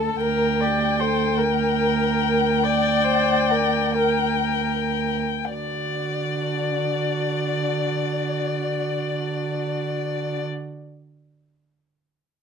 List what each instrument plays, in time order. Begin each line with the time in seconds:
Already playing: cello D2, violin A4 A5, viola A4
0.21 cello D2, viola A#4, violin A#4 G5
0.61 violin G4, viola D5
0.99 violin A4, viola C5
1.38 viola A#4, violin A#4
2.63 violin D5, viola D5
3.04 violin C5
3.50 violin A#4
3.98 violin A#4, viola A#4
5.50 cello D3, viola F#4, violin D5